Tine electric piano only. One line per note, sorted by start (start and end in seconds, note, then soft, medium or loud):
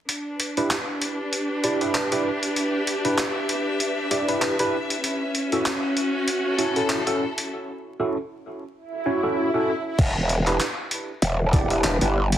0.57 0.74 D4 medium
0.57 0.74 E4 medium
0.57 0.74 G4 medium
0.57 0.74 B4 medium
1.64 1.79 D4 medium
1.64 1.79 E4 medium
1.64 1.79 G4 medium
1.64 1.79 D5 loud
1.81 2.07 D4 medium
1.81 2.07 E4 medium
1.81 2.07 G4 medium
1.81 2.07 B4 medium
2.12 2.29 D4 medium
2.12 2.29 E4 medium
2.12 2.29 G4 medium
2.12 2.29 B4 medium
3.05 3.21 D4 medium
3.05 3.21 E4 medium
3.05 3.21 G4 medium
3.05 3.21 B4 medium
4.11 4.26 D4 medium
4.11 4.26 E4 medium
4.11 4.26 G4 medium
4.11 4.26 D5 loud
4.28 4.54 D4 medium
4.28 4.54 E4 medium
4.28 4.54 G4 medium
4.28 4.54 B4 medium
4.60 4.76 D4 medium
4.60 4.76 E4 medium
4.60 4.76 G4 medium
4.60 4.76 B4 loud
5.52 5.69 C#4 medium
5.52 5.69 E4 medium
5.52 5.69 F#4 medium
5.52 5.69 A4 loud
6.58 6.73 C#4 medium
6.58 6.73 E4 medium
6.58 6.73 F#4 medium
6.58 6.73 C#5 medium
6.76 7.02 C#4 medium
6.76 7.02 E4 medium
6.76 7.02 F#4 medium
6.76 7.02 A4 medium
7.07 7.23 C#4 medium
7.07 7.23 E4 medium
7.07 7.23 F#4 medium
7.07 7.23 A4 loud
8.00 8.16 C#4 medium
8.00 8.16 E4 medium
8.00 8.16 F#4 medium
8.00 8.16 A4 medium
9.06 9.21 C#4 medium
9.06 9.21 E4 medium
9.06 9.21 F#4 medium
9.06 9.21 C#5 medium
9.23 9.49 C#4 medium
9.23 9.49 E4 medium
9.23 9.49 F#4 medium
9.23 9.49 A4 loud
9.54 9.71 C#4 medium
9.54 9.71 E4 medium
9.54 9.71 F#4 medium
9.54 9.71 A4 loud
10.47 10.63 D4 medium
10.47 10.63 E4 medium
10.47 10.63 G4 medium
10.47 10.63 B4 medium
11.53 11.68 D4 medium
11.53 11.68 E4 medium
11.53 11.68 G4 medium
11.53 11.68 D5 loud
11.71 11.96 D4 medium
11.71 11.96 E4 medium
11.71 11.96 G4 medium
11.71 11.96 B4 medium
12.02 12.18 D4 medium
12.02 12.18 E4 medium
12.02 12.18 G4 medium
12.02 12.18 B4 loud